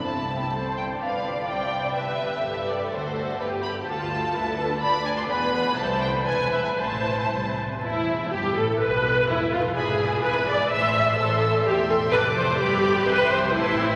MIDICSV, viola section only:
0, 0, Header, 1, 2, 480
1, 0, Start_track
1, 0, Key_signature, 0, "major"
1, 0, Tempo, 478088
1, 42, Time_signature, 2, 2, 24, 8
1, 3890, Key_signature, 0, "minor"
1, 5801, Tempo, 511509
1, 7721, Tempo, 488998
1, 8681, Tempo, 475059
1, 13888, End_track
2, 0, Start_track
2, 0, Title_t, "Viola section"
2, 0, Program_c, 0, 48
2, 540, Note_on_c, 0, 72, 39
2, 987, Note_off_c, 0, 72, 0
2, 1030, Note_on_c, 0, 74, 42
2, 1982, Note_off_c, 0, 74, 0
2, 1984, Note_on_c, 0, 71, 39
2, 2452, Note_off_c, 0, 71, 0
2, 2470, Note_on_c, 0, 69, 45
2, 3400, Note_off_c, 0, 69, 0
2, 3419, Note_on_c, 0, 67, 46
2, 3893, Note_off_c, 0, 67, 0
2, 3894, Note_on_c, 0, 65, 48
2, 4361, Note_off_c, 0, 65, 0
2, 4363, Note_on_c, 0, 69, 57
2, 4840, Note_off_c, 0, 69, 0
2, 4841, Note_on_c, 0, 74, 61
2, 5309, Note_off_c, 0, 74, 0
2, 5313, Note_on_c, 0, 71, 64
2, 5798, Note_off_c, 0, 71, 0
2, 5801, Note_on_c, 0, 72, 58
2, 6267, Note_off_c, 0, 72, 0
2, 6269, Note_on_c, 0, 71, 61
2, 6737, Note_off_c, 0, 71, 0
2, 6749, Note_on_c, 0, 72, 51
2, 7485, Note_off_c, 0, 72, 0
2, 7726, Note_on_c, 0, 64, 65
2, 8172, Note_off_c, 0, 64, 0
2, 8206, Note_on_c, 0, 67, 73
2, 8445, Note_off_c, 0, 67, 0
2, 8449, Note_on_c, 0, 69, 61
2, 8684, Note_off_c, 0, 69, 0
2, 8689, Note_on_c, 0, 71, 74
2, 9166, Note_off_c, 0, 71, 0
2, 9169, Note_on_c, 0, 64, 73
2, 9404, Note_off_c, 0, 64, 0
2, 9415, Note_on_c, 0, 65, 62
2, 9496, Note_off_c, 0, 65, 0
2, 9648, Note_on_c, 0, 68, 75
2, 10112, Note_off_c, 0, 68, 0
2, 10128, Note_on_c, 0, 71, 75
2, 10364, Note_off_c, 0, 71, 0
2, 10373, Note_on_c, 0, 74, 74
2, 10603, Note_off_c, 0, 74, 0
2, 10611, Note_on_c, 0, 76, 83
2, 11079, Note_off_c, 0, 76, 0
2, 11086, Note_on_c, 0, 69, 86
2, 11554, Note_off_c, 0, 69, 0
2, 11577, Note_on_c, 0, 67, 85
2, 11658, Note_off_c, 0, 67, 0
2, 11805, Note_on_c, 0, 69, 76
2, 11886, Note_off_c, 0, 69, 0
2, 12038, Note_on_c, 0, 71, 101
2, 12119, Note_off_c, 0, 71, 0
2, 12279, Note_on_c, 0, 72, 74
2, 12512, Note_off_c, 0, 72, 0
2, 12525, Note_on_c, 0, 67, 90
2, 12990, Note_off_c, 0, 67, 0
2, 12997, Note_on_c, 0, 71, 100
2, 13227, Note_on_c, 0, 72, 80
2, 13235, Note_off_c, 0, 71, 0
2, 13466, Note_on_c, 0, 64, 88
2, 13472, Note_off_c, 0, 72, 0
2, 13888, Note_off_c, 0, 64, 0
2, 13888, End_track
0, 0, End_of_file